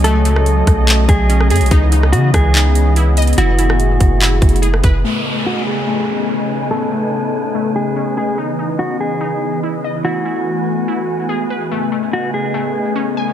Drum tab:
HH |x-----------x-----------x-----------x-----------x-----------x-----------x-----------x--x--x--x--|x-----------x-----------x-----------x-----------x-----------x-----------x-----------x--x--x--x--|x-----------x-----------x-----------x-----------x-----------x---x---x---x-----------x-----------|------------------------------------------------------------------------------------------------|
CP |------------------------------------------------x-----------------------------------------------|------------------------------------------------x-----------------------------------------------|------------------------------------------------x-----------------------------------------------|------------------------------------------------------------------------------------------------|
SD |------------------r-----------------r-----------------------------------------r-----------------|------------------r-----------------r-----------------------------------------------------------|------------------r-----------------------------------------------------------r-----------------|------------------------------------------------------------------------------------------------|
BD |------------------------------------o-----------------------o-----------------------------------|o-----------------------------------o-----------------------------------------------------------|------------------------------------o-----------------------o-----------------------o-----------|------------------------------------------------------------------------------------------------|

HH |------------------------------------------------------------------------------------------------|------------------------------------------------------------------------------------------------|------------------------------------------------------------------------------------------------|------------------------------------------------------------------------------------------------|
CP |------------------------------------------------------------------------------------------------|------------------------------------------------------------------------------------------------|------------------------------------------------------------------------------------------------|------------------------------------------------------------------------------------------------|
SD |------------------------------------------------------------------------------------------------|------------------------------------------------------------------------------------------------|------------------------------------------------------------------------------------------------|------------------------------------------------------------------------------------------------|
BD |------------------------------------------------------------------------------------------------|------------------------------------------------------------------------------------------------|------------------------------------------------------------------------------------------------|------------------------------------------------------------------------------------------------|